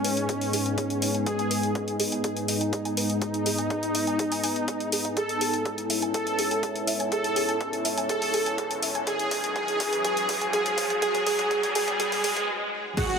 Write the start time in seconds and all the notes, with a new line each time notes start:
Already playing: G#2 G#3 B3 C#4 D#4 G#4 B4 G#5
0.04 B4, open hi-hat
0.17 closed hi-hat
0.29 G#4, kick, closed hi-hat
0.41 open hi-hat
0.53 G#4, open hi-hat
0.66 G#5, closed hi-hat
0.78 G#4, kick, closed hi-hat
0.90 closed hi-hat
1.02 D#5, open hi-hat
1.15 G#5, closed hi-hat
1.26 G#4, kick, closed hi-hat
1.39 G#5, closed hi-hat
1.51 B4, open hi-hat
1.63 closed hi-hat
1.75 G#4, kick, closed hi-hat
1.88 closed hi-hat
2.00 G#4, open hi-hat
2.12 G#5, closed hi-hat
2.24 G#4, kick, closed hi-hat
2.37 closed hi-hat
2.48 D#4 D#5, open hi-hat
2.61 G#5, closed hi-hat
2.73 G#4, kick, closed hi-hat
2.85 G#5, closed hi-hat
2.97 B4, open hi-hat
3.10 closed hi-hat
3.22 G#4, kick, closed hi-hat
3.34 closed hi-hat
3.46 G#4, open hi-hat
3.58 G#5, closed hi-hat
3.70 G#4, kick, closed hi-hat
3.83 closed hi-hat
3.95 D#5, open hi-hat
4.07 G#5, closed hi-hat
4.19 G#4, kick, closed hi-hat
4.32 G#5, open hi-hat
4.44 G#5, open hi-hat
4.56 closed hi-hat
4.68 G#4, kick, closed hi-hat
4.80 closed hi-hat
4.92 G#4, open hi-hat
5.05 D#5, closed hi-hat
5.17 C#4 E4 G#4 A4, kick, closed hi-hat, riser
5.29 closed hi-hat
5.41 G#4, open hi-hat
5.54 G#5, closed hi-hat
5.65 G#4, kick, closed hi-hat
5.78 closed hi-hat
5.90 E5, open hi-hat
6.02 G#5, closed hi-hat
6.12 G#4 A4 C#5, kick, closed hi-hat
6.27 closed hi-hat
6.39 G#4, open hi-hat
6.51 G#5, closed hi-hat
6.63 G#4, kick, closed hi-hat
6.76 closed hi-hat
6.87 E5, open hi-hat
6.92 A5
7.00 G#5, closed hi-hat
7.12 G#4 A4, kick, closed hi-hat
7.24 closed hi-hat
7.36 G#4, open hi-hat
7.49 G#5, closed hi-hat
7.61 G#4, kick, closed hi-hat
7.73 closed hi-hat
7.85 E5, open hi-hat
7.97 G#5, closed hi-hat
8.09 G#4 A4, kick, closed hi-hat
8.22 open hi-hat
8.34 G#4, open hi-hat
8.46 G#5, closed hi-hat
8.58 G#4, kick, closed hi-hat
8.71 closed hi-hat
8.83 E5, open hi-hat
8.95 G#5, closed hi-hat
9.07 F#2 F#3 C#4 F#4 G#4, kick, closed hi-hat
9.19 closed hi-hat
9.31 G#4, kick, open hi-hat
9.44 G#5, closed hi-hat
9.56 G#4, kick, closed hi-hat
9.68 closed hi-hat
9.80 G#4, kick, open hi-hat
9.93 G#5, closed hi-hat
10.04 G#4, kick, closed hi-hat
10.17 closed hi-hat
10.29 G#4, kick, open hi-hat
10.41 G#5, closed hi-hat
10.53 G#4, kick, closed hi-hat
10.66 closed hi-hat
10.78 G#4, kick, open hi-hat
10.83 G#5
10.90 G#5, closed hi-hat
11.02 G#4, kick, closed hi-hat
11.15 kick, closed hi-hat
11.26 G#4, kick, open hi-hat
11.39 kick, closed hi-hat
11.51 G#4, kick, closed hi-hat
11.63 kick, closed hi-hat
11.75 G#4, kick, open hi-hat
11.88 kick, closed hi-hat
12.00 G#4, kick, closed hi-hat
12.12 kick, open hi-hat
12.24 G#4, kick, open hi-hat
12.37 kick, closed hi-hat
12.97 D#3 G#3 B3 D#4 F#4 G#4 F#5 G#5, kick, closed hi-hat, crash, impact
13.10 closed hi-hat